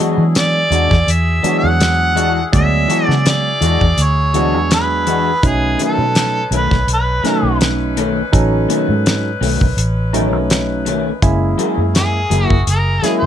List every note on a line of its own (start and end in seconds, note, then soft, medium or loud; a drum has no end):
0.00 0.22 E3 medium
0.00 0.60 F#3 medium
0.00 0.22 G#3 medium
0.00 0.60 G#3 medium
0.00 0.60 B3 medium
0.00 0.22 D4 medium
0.00 0.60 D4 medium
0.00 5.39 E4 medium
0.00 0.22 F#4 medium
0.00 5.38 F#4 medium
0.00 5.38 G#4 medium
0.18 0.65 E3 medium
0.35 1.12 D5 loud
0.35 snare loud
0.35 closed hi-hat medium
0.70 0.88 E2 medium
0.70 0.94 E3 medium
0.70 0.94 G#3 medium
0.70 0.95 D4 medium
0.70 0.95 F#4 medium
0.70 closed hi-hat medium
0.91 1.06 E2 medium
0.91 kick medium
0.91 snare soft
1.07 1.40 E2 medium
1.07 1.58 E5 loud
1.07 closed hi-hat medium
1.43 1.66 E3 medium
1.43 2.16 F#3 medium
1.43 2.16 G#3 medium
1.43 1.67 G#3 medium
1.43 2.16 B3 medium
1.43 2.16 D4 medium
1.43 1.67 D4 medium
1.43 1.68 F#4 medium
1.43 muted fingered electric bass stroke soft
1.43 closed hi-hat medium
1.59 2.50 F#5 loud
1.64 2.43 E2 medium
1.80 snare loud
1.80 closed hi-hat medium
2.15 2.39 E3 medium
2.15 2.39 G#3 medium
2.15 2.40 D4 medium
2.15 2.40 F#4 medium
2.15 closed hi-hat medium
2.52 2.85 D2 medium
2.52 3.50 F#3 medium
2.52 3.50 G#3 medium
2.52 3.50 B3 medium
2.52 3.50 D5 medium
2.52 3.05 E5 loud
2.52 kick loud
2.52 closed hi-hat medium
2.88 3.12 E3 medium
2.88 3.12 G#3 medium
2.88 3.12 D4 medium
2.88 3.13 F#4 medium
2.88 closed hi-hat medium
3.05 3.56 C#3 medium
3.05 3.29 D5 loud
3.11 snare soft
3.26 4.04 D5 medium
3.26 snare loud
3.26 closed hi-hat medium
3.61 3.79 E2 medium
3.61 3.84 E3 medium
3.61 3.85 G#3 medium
3.61 3.85 D4 medium
3.61 3.85 F#4 medium
3.61 closed hi-hat medium
3.81 3.96 E2 medium
3.81 kick medium
3.97 4.54 D2 medium
3.97 closed hi-hat medium
4.02 4.73 C#5 loud
4.34 4.57 E3 medium
4.34 5.07 F#3 medium
4.34 4.57 G#3 medium
4.34 5.07 G#3 medium
4.34 5.07 B3 medium
4.34 5.07 D4 medium
4.34 4.58 D4 medium
4.34 4.58 F#4 medium
4.34 closed hi-hat medium
4.54 5.33 E2 medium
4.71 5.48 B4 medium
4.71 snare loud
4.71 closed hi-hat medium
5.06 5.29 E3 medium
5.06 5.30 G#3 medium
5.06 5.30 D4 medium
5.06 5.30 F#4 medium
5.06 closed hi-hat medium
5.42 5.75 B1 medium
5.42 6.40 F#3 medium
5.42 6.40 A3 medium
5.42 11.18 C#4 medium
5.42 6.40 C#4 medium
5.42 11.18 D#4 medium
5.42 6.40 D#4 medium
5.42 11.18 B4 medium
5.42 kick loud
5.42 closed hi-hat medium
5.46 5.81 G#4 medium
5.79 6.02 B2 medium
5.79 6.02 D#3 medium
5.79 6.03 A3 medium
5.79 6.03 C#4 medium
5.79 closed hi-hat medium
5.84 6.50 A4 medium
5.98 6.45 B2 medium
6.15 snare loud
6.15 closed hi-hat medium
6.51 6.69 B1 medium
6.51 6.75 B2 medium
6.51 6.75 D#3 medium
6.51 6.75 A3 medium
6.51 6.75 C#4 medium
6.51 closed hi-hat medium
6.56 6.88 B4 medium
6.71 6.86 B1 medium
6.71 kick medium
6.71 snare soft
6.87 7.20 B1 medium
6.87 closed hi-hat medium
6.94 7.59 B4 medium
7.23 7.47 B2 medium
7.23 7.47 D#3 medium
7.23 7.97 F#3 medium
7.23 7.47 A3 medium
7.23 7.97 A3 medium
7.23 7.97 C#4 medium
7.23 7.48 C#4 medium
7.23 7.97 D#4 medium
7.23 muted fingered electric bass stroke soft
7.23 snare soft
7.23 closed hi-hat medium
7.43 8.22 B1 medium
7.61 snare loud
7.61 closed hi-hat medium
7.97 8.19 B2 medium
7.97 8.20 D#3 medium
7.97 8.20 A3 medium
7.97 8.20 C#4 loud
7.97 closed hi-hat medium
8.33 8.65 A1 medium
8.33 9.30 F#3 medium
8.33 9.30 C#4 medium
8.33 9.30 D#4 medium
8.33 9.30 A4 medium
8.33 kick loud
8.33 closed hi-hat medium
8.69 8.92 B2 medium
8.69 8.92 D#3 medium
8.69 8.92 A3 medium
8.69 8.93 C#4 medium
8.69 closed hi-hat medium
8.89 9.35 G#2 medium
9.06 snare loud
9.06 closed hi-hat medium
9.41 9.58 B1 medium
9.41 9.64 B2 medium
9.41 9.64 D#3 medium
9.41 9.65 A3 medium
9.41 9.65 C#4 medium
9.41 open hi-hat medium
9.61 9.76 B1 medium
9.61 kick medium
9.77 10.32 A1 medium
9.77 closed hi-hat medium
10.13 10.36 B2 medium
10.13 10.37 D#3 medium
10.13 10.86 F#3 medium
10.13 10.86 A3 medium
10.13 10.37 A3 medium
10.13 10.86 C#4 medium
10.13 10.37 C#4 loud
10.13 10.86 D#4 medium
10.13 closed hi-hat medium
10.32 11.12 B1 medium
10.50 snare loud
10.50 closed hi-hat medium
10.86 11.09 B2 medium
10.86 11.09 D#3 medium
10.86 11.10 A3 medium
10.86 11.10 C#4 medium
10.86 closed hi-hat medium
11.22 11.54 F#1 medium
11.22 12.19 G#3 medium
11.22 13.26 A#3 medium
11.22 12.19 A#3 medium
11.22 12.19 C#4 medium
11.22 13.26 E4 medium
11.22 12.19 E4 medium
11.22 13.26 G#4 medium
11.22 kick loud
11.22 closed hi-hat medium
11.58 11.81 F#3 medium
11.58 11.81 A#3 medium
11.58 11.82 E4 medium
11.58 11.82 G#4 loud
11.58 closed hi-hat medium
11.78 12.25 F#2 medium
11.95 12.47 G#4 medium
11.95 snare loud
11.95 closed hi-hat medium
12.30 12.48 F#1 medium
12.30 12.53 F#3 medium
12.30 12.54 A#3 medium
12.30 12.54 E4 medium
12.30 12.54 G#4 medium
12.30 closed hi-hat medium
12.47 12.65 F#1 medium
12.47 12.64 F#4 medium
12.47 kick medium
12.67 12.99 F#1 medium
12.67 13.13 A#4 medium
12.67 closed hi-hat medium
13.02 13.25 F#3 medium
13.02 13.26 G#3 medium
13.02 13.26 A#3 medium
13.02 13.26 C#4 medium
13.02 13.26 E4 medium
13.02 13.26 G#4 medium
13.02 muted fingered electric bass stroke soft
13.02 snare soft
13.02 closed hi-hat medium
13.19 13.26 F#1 medium
13.19 13.26 C#5 medium